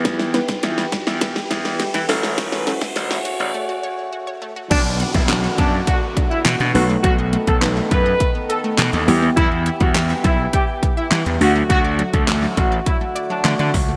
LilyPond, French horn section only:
\new Staff \with { instrumentName = "French horn section" } { \time 4/4 \key b \minor \tempo 4 = 103 << { <e g'>2.~ <e g'>8 <cis fis'>8~ | <cis fis'>1 | <d fis'>2.~ <d fis'>8 <dis a'>8~ | <dis a'>2.~ <dis a'>8 <e g'>8~ |
<e g'>2.~ <e g'>8 <d fis'>8~ | <d fis'>1 | } \\ { b2.~ b8 a8~ | a1 | b1~ | b1~ |
b2.~ b8 a8~ | a1 | } >> }